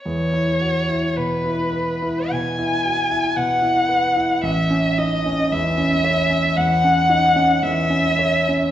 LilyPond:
<<
  \new Staff \with { instrumentName = "Violin" } { \time 4/4 \key e \major \tempo 4 = 55 cis''4 b'4 gis''4 fis''4 | e''8 dis''8 e''4 fis''4 e''4 | }
  \new Staff \with { instrumentName = "Grand piano" } { \time 4/4 \key e \major e,16 e'16 fis'16 e'16 b,16 e'16 b'16 e'16 b,16 e'16 fis'16 e'16 b,16 e'16 b'16 e'16 | a,,16 cis'16 dis'16 cis'16 e,16 cis'16 cis''16 cis'16 e,16 cis'16 dis'16 cis'16 e,16 cis'16 cis''16 cis'16 | }
>>